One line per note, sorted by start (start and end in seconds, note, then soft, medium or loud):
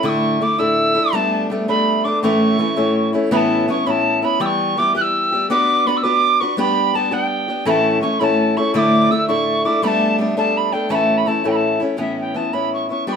0.03 0.41 A2 medium
0.03 0.40 D3 medium
0.03 0.41 A3 medium
0.03 0.41 D4 medium
0.03 0.42 E4 medium
0.03 0.09 E6 medium
0.08 0.43 C#6 loud
0.41 0.59 D3 medium
0.41 0.58 A3 medium
0.41 0.58 D4 medium
0.41 0.57 E4 medium
0.41 0.60 D6 medium
0.58 0.97 A2 soft
0.58 0.97 D3 medium
0.58 0.97 A3 medium
0.58 0.95 D4 medium
0.58 0.94 E4 medium
0.58 1.15 E6 loud
0.95 1.13 A3 soft
0.95 1.14 D4 soft
0.95 1.13 E4 medium
1.13 1.49 G3 medium
1.13 1.51 A3 medium
1.13 1.51 B3 medium
1.13 1.51 D4 medium
1.13 1.44 A5 loud
1.50 1.68 G3 soft
1.50 1.68 A3 medium
1.50 1.68 B3 medium
1.50 1.67 D4 medium
1.68 2.06 G3 soft
1.68 2.07 A3 medium
1.68 2.05 B3 medium
1.68 2.04 D4 medium
1.68 2.05 B5 medium
2.04 2.23 A3 soft
2.04 2.23 B3 soft
2.04 2.23 D4 medium
2.04 2.22 D6 medium
2.22 2.60 A2 medium
2.22 2.58 E3 medium
2.22 2.58 A3 medium
2.22 2.59 C#4 medium
2.22 2.61 E4 medium
2.22 3.10 C#6 medium
2.59 2.77 E3 medium
2.59 2.76 A3 medium
2.59 2.76 C#4 medium
2.59 2.75 E4 medium
2.76 3.14 A2 medium
2.76 3.31 E3 medium
2.76 3.14 A3 medium
2.76 3.13 C#4 medium
2.76 3.13 E4 medium
3.13 3.32 A3 soft
3.13 3.31 C#4 medium
3.13 3.31 E4 medium
3.31 3.68 A2 medium
3.31 3.67 E3 medium
3.31 3.68 B3 medium
3.31 3.68 C#4 medium
3.31 3.69 E4 medium
3.31 3.37 B5 medium
3.36 3.66 A5 medium
3.68 3.86 E3 soft
3.68 3.86 B3 medium
3.68 3.85 C#4 medium
3.68 3.85 E4 medium
3.68 3.88 C#6 medium
3.86 4.23 A2 medium
3.86 4.23 E3 medium
3.86 4.24 B3 medium
3.86 4.22 C#4 medium
3.86 4.21 E4 medium
3.86 4.25 A5 loud
3.86 3.91 B5 medium
4.22 4.40 B3 soft
4.22 4.40 C#4 soft
4.22 4.40 E4 medium
4.22 4.42 B5 medium
4.40 4.76 E3 medium
4.40 4.77 G3 medium
4.40 4.79 B3 medium
4.40 4.77 G4 medium
4.40 4.46 E6 loud
4.45 4.79 C#6 loud
4.77 4.95 E3 medium
4.77 4.95 G3 medium
4.77 4.94 B3 medium
4.77 4.93 G4 medium
4.77 4.95 D6 loud
4.95 5.32 E3 soft
4.95 5.32 G3 soft
4.95 5.33 B3 medium
4.95 5.31 G4 medium
4.95 5.02 F#6 medium
5.01 5.46 E6 medium
5.32 5.50 G3 medium
5.32 5.49 B3 soft
5.32 5.49 G4 medium
5.50 5.86 B3 medium
5.50 5.86 D4 medium
5.50 5.87 F#4 medium
5.50 5.87 B4 medium
5.50 5.88 D6 loud
5.86 6.04 B3 medium
5.86 6.04 D4 medium
5.86 6.03 F#4 medium
5.86 6.02 B4 medium
5.86 5.98 B5 medium
5.96 6.04 E6 medium
6.03 6.41 B3 medium
6.03 6.40 D4 soft
6.03 6.40 F#4 medium
6.03 6.40 B4 medium
6.03 6.42 D6 loud
6.40 6.57 D4 soft
6.40 6.58 F#4 medium
6.40 6.58 B4 medium
6.40 6.57 C#6 medium
6.57 6.93 G3 medium
6.57 6.94 B3 medium
6.57 6.94 D4 medium
6.57 6.95 G4 medium
6.57 6.96 B5 loud
6.94 7.11 G3 soft
6.94 7.11 B3 medium
6.94 7.10 D4 medium
6.94 7.10 G4 medium
6.94 7.14 A5 medium
7.11 7.49 G3 soft
7.11 7.48 B3 medium
7.11 7.48 D4 medium
7.11 7.47 G4 medium
7.11 7.67 G5 loud
7.48 7.66 B3 soft
7.48 7.66 D4 medium
7.48 7.66 G4 soft
7.65 8.02 A2 medium
7.65 8.00 E3 medium
7.65 8.02 A3 medium
7.65 8.02 C#4 medium
7.65 8.03 E4 medium
7.65 8.01 A5 medium
7.65 7.70 B5 medium
8.01 8.19 E3 soft
8.01 8.20 A3 medium
8.01 8.19 C#4 medium
8.01 8.19 E4 medium
8.01 8.20 C#6 medium
8.19 8.57 A2 soft
8.19 8.57 E3 soft
8.19 8.58 A3 medium
8.19 8.57 C#4 medium
8.19 8.56 E4 medium
8.19 8.24 B5 medium
8.23 8.58 A5 medium
8.56 8.74 A3 soft
8.56 8.75 C#4 medium
8.56 8.74 E4 medium
8.56 8.74 C#6 medium
8.74 9.10 A2 medium
8.74 9.10 D3 medium
8.74 9.12 A3 medium
8.74 9.11 D4 medium
8.74 9.11 E4 medium
8.74 9.12 D6 loud
8.74 8.79 E6 loud
9.10 9.28 D3 soft
9.10 9.28 A3 medium
9.10 9.27 D4 soft
9.10 9.27 E4 medium
9.10 9.27 E6 medium
9.28 9.66 A2 soft
9.28 9.66 D3 soft
9.28 9.67 A3 medium
9.28 9.65 D4 medium
9.28 9.64 E4 medium
9.28 9.66 C#6 medium
9.65 9.82 A3 soft
9.65 9.83 D4 medium
9.65 9.82 E4 medium
9.65 9.84 D6 medium
9.82 10.17 G3 medium
9.82 10.19 A3 medium
9.82 10.19 B3 medium
9.82 10.20 D4 medium
9.82 9.88 B5 medium
9.87 10.16 A5 medium
10.19 10.36 G3 medium
10.19 10.37 A3 soft
10.19 10.36 B3 medium
10.19 10.36 D4 medium
10.37 10.74 G3 medium
10.37 10.74 A3 medium
10.37 10.72 B3 medium
10.37 10.71 D4 medium
10.37 10.58 A5 loud
10.57 10.73 B5 medium
10.72 10.89 A3 soft
10.72 10.90 B3 soft
10.72 10.90 D4 medium
10.72 10.92 G5 medium
10.89 11.26 A2 medium
10.89 11.25 E3 medium
10.89 11.26 A3 medium
10.89 11.26 C#4 medium
10.89 11.27 E4 medium
10.89 10.95 B5 medium
10.94 11.19 A5 medium
11.17 11.22 B5 medium
11.22 11.28 B5 medium
11.26 11.44 E3 medium
11.26 11.44 A3 medium
11.26 11.44 C#4 medium
11.26 11.43 E4 medium
11.26 11.48 A5 medium
11.44 11.82 A2 medium
11.44 11.82 E3 soft
11.44 11.81 A3 medium
11.44 11.80 C#4 medium
11.44 11.79 E4 medium
11.44 11.52 G5 medium
11.50 11.56 B5 medium
11.55 11.81 A5 medium
11.80 11.98 A3 soft
11.80 11.97 C#4 medium
11.80 11.97 E4 medium
11.97 12.34 A2 medium
11.97 12.33 E3 medium
11.97 12.34 B3 medium
11.97 12.35 C#4 medium
11.97 12.35 E4 medium
11.97 12.17 E5 medium
12.20 12.37 G5 medium
12.34 12.52 E3 medium
12.34 12.52 B3 medium
12.34 12.52 C#4 soft
12.34 12.52 E4 soft
12.34 12.54 A5 medium
12.53 12.90 A2 soft
12.53 12.90 E3 soft
12.53 12.90 B3 soft
12.53 12.89 C#4 soft
12.53 12.88 E4 medium
12.53 12.72 B5 medium
12.73 12.89 C#6 medium
12.89 13.06 B3 soft
12.89 13.07 C#4 soft
12.89 13.07 E4 soft
12.89 13.06 C#6 medium
13.07 13.16 G3 medium
13.07 13.16 B3 medium
13.07 13.16 D4 medium
13.07 13.16 G4 medium
13.07 13.13 C#6 medium
13.12 13.16 B5 medium